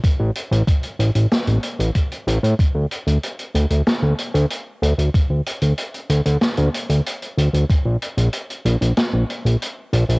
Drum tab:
HH |x-xxxxxxxxxxxxxx|x-xxxxxxx-xxx-xx|x-xxxxxxxxxxxxxx|x-xxxxxxx-xxx-xx|
SD |--------o-------|--------o-------|--------o-------|--------o-------|
BD |o---o-------o---|o---------------|o---------------|o---------------|